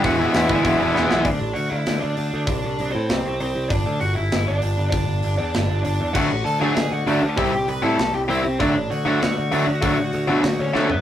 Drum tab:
CC |--------|--------|--------|--------|
HH |o-o-o---|o-o-o-o-|o-o-o-o-|o-o-o-o-|
SD |--o---oo|----o---|----o---|----o---|
FT |--------|--------|--------|--------|
BD |o--oo---|o-------|o-------|o-------|

CC |--------|x-------|--------|--------|
HH |o-o-o-o-|--o-o-o-|o-o-o-o-|o-o-o-o-|
SD |----o---|----o---|----o---|----o---|
FT |--------|--------|--------|--------|
BD |o-------|o-------|o-------|o-------|

CC |--------|
HH |o-o-o---|
SD |----o-o-|
FT |-------o|
BD |o-------|